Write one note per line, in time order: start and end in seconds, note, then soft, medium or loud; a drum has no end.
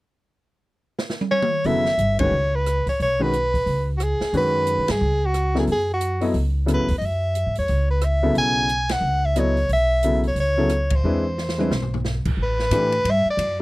0.99 snare medium
1.10 snare medium
1.21 high tom medium
1.31 1.68 C#5 medium
1.31 high tom medium
1.42 mid tom medium
1.64 1.96 F#1 medium
1.64 1.84 C#3 medium
1.64 1.84 F#3 medium
1.64 1.84 B3 medium
1.64 1.84 E4 medium
1.64 1.84 A4 medium
1.64 2.19 E5 loud
1.64 open hi-hat soft
1.85 snare soft
1.98 2.29 G1 medium
1.98 closed hi-hat soft
2.19 2.31 D#3 medium
2.19 2.31 G#3 soft
2.19 2.31 C#4 soft
2.19 2.31 F#4 soft
2.19 2.32 B4 medium
2.19 2.57 C#5 medium
2.19 kick medium
2.19 ride medium
2.31 2.82 C#2 medium
2.55 2.88 B4 medium
2.66 cross-stick soft
2.66 closed hi-hat soft
2.86 3.00 C#5 medium
2.86 muted upright bass stroke soft
2.86 kick soft
2.86 open hi-hat soft
3.00 3.63 B1 medium
3.00 3.24 C#5 medium
3.00 open hi-hat soft
3.19 3.31 D#3 medium
3.19 3.31 G#3 soft
3.19 3.32 C#4 soft
3.19 3.32 F#4 medium
3.19 3.32 B4 medium
3.19 3.88 B4 medium
3.33 closed hi-hat soft
3.54 kick soft
3.54 open hi-hat soft
3.66 4.17 C#2 medium
3.66 open hi-hat soft
3.97 4.04 F#4 medium
3.97 cross-stick medium
3.97 closed hi-hat soft
4.03 4.35 G#4 medium
4.20 muted upright bass stroke soft
4.20 snare soft
4.33 4.75 F#2 medium
4.33 4.83 D#3 medium
4.33 4.84 G#3 soft
4.33 4.84 C#4 soft
4.33 4.84 F#4 soft
4.33 4.84 B4 medium
4.33 open hi-hat soft
4.37 4.93 B4 medium
4.67 closed hi-hat soft
4.78 4.88 G#2 medium
4.88 5.00 G2 medium
4.88 5.27 G#4 medium
4.88 snare medium
4.88 ride medium
5.01 5.64 C#2 medium
5.26 5.57 F#4 medium
5.34 cross-stick soft
5.34 closed hi-hat soft
5.55 5.66 C#3 medium
5.55 5.66 F#3 medium
5.55 5.66 B3 medium
5.55 5.66 E4 medium
5.55 5.67 A4 medium
5.55 snare soft
5.60 5.64 G#4 medium
5.67 6.31 F#2 medium
5.67 open hi-hat soft
5.72 5.89 G#4 medium
5.93 6.26 F#4 medium
6.01 closed hi-hat soft
6.21 6.33 F#3 medium
6.21 6.33 B3 medium
6.21 6.33 E4 medium
6.21 6.33 A4 medium
6.21 6.33 D#5 medium
6.21 open hi-hat soft
6.34 6.76 C#2 medium
6.34 open hi-hat soft
6.66 6.85 C#3 medium
6.66 6.86 F#3 soft
6.66 6.86 B3 medium
6.66 6.86 E4 soft
6.66 6.86 A4 medium
6.66 cross-stick soft
6.66 closed hi-hat soft
6.74 6.97 B4 medium
6.79 6.89 F#2 soft
6.88 7.00 E2 medium
6.88 kick soft
6.88 open hi-hat soft
6.98 7.43 F#2 medium
6.98 7.07 D#5 medium
6.98 open hi-hat soft
7.05 7.57 E5 medium
7.35 closed hi-hat soft
7.46 7.57 G#2 medium
7.55 7.68 E2 medium
7.55 7.88 C#5 medium
7.55 open hi-hat soft
7.68 8.32 C#2 medium
7.68 open hi-hat soft
7.91 8.06 B4 medium
8.01 8.37 E5 medium
8.01 cross-stick medium
8.01 closed hi-hat soft
8.23 8.66 C#3 medium
8.23 8.66 F#3 medium
8.23 8.66 B3 medium
8.23 8.66 E4 soft
8.23 8.67 A4 medium
8.35 8.99 B1 medium
8.35 8.94 G#5 loud
8.35 open hi-hat soft
8.69 closed hi-hat soft
8.89 9.27 F#5 medium
8.89 snare medium
8.89 ride medium
9.01 9.65 C#2 medium
9.25 9.41 E5 medium
9.36 9.54 F#3 medium
9.36 9.55 B3 medium
9.36 9.55 E4 soft
9.36 9.55 A4 soft
9.36 9.71 C#5 medium
9.36 9.55 D#5 medium
9.36 cross-stick soft
9.36 closed hi-hat soft
9.57 open hi-hat soft
9.69 10.33 B1 medium
9.69 10.22 E5 medium
9.69 open hi-hat soft
10.03 10.22 C#3 medium
10.03 10.22 F#3 soft
10.03 10.22 B3 soft
10.03 10.23 E4 soft
10.03 10.23 A4 medium
10.03 closed hi-hat soft
10.23 open hi-hat soft
10.27 10.38 C#5 medium
10.35 11.00 C#2 medium
10.35 open hi-hat soft
10.40 10.97 C#5 medium
10.57 10.69 C#3 medium
10.57 10.69 F#3 medium
10.57 10.70 B3 medium
10.57 10.69 E4 medium
10.57 10.69 A4 medium
10.69 cross-stick medium
10.69 closed hi-hat soft
10.90 kick medium
10.90 ride medium
10.95 12.07 C5 medium
11.04 11.68 E2 medium
11.04 11.23 G#3 medium
11.04 11.23 C4 medium
11.04 11.23 D4 medium
11.04 11.23 E4 medium
11.04 11.23 B4 medium
11.38 snare soft
11.49 snare soft
11.58 11.70 G#3 medium
11.58 11.70 C4 medium
11.58 11.70 D4 soft
11.58 11.70 E4 medium
11.58 11.70 B4 medium
11.58 high tom medium
11.71 12.21 B1 medium
11.71 snare medium
11.82 floor tom medium
11.94 floor tom medium
12.04 snare soft
12.25 12.36 A#1 medium
12.25 kick medium
12.25 crash medium
12.37 12.70 A1 medium
12.43 13.12 B4 loud
12.59 snare soft
12.71 13.04 A2 medium
12.71 12.91 E3 medium
12.71 12.90 A3 soft
12.71 12.91 D4 soft
12.71 12.91 G4 medium
12.71 12.91 B4 medium
12.71 hi-hat pedal medium
12.71 ride medium
12.92 ride soft
13.04 13.24 G2 medium
13.04 ride medium
13.10 13.29 E5 loud
13.25 muted upright bass stroke soft
13.30 13.60 D5 medium
13.37 13.62 F#2 medium
13.37 hi-hat pedal soft
13.37 ride medium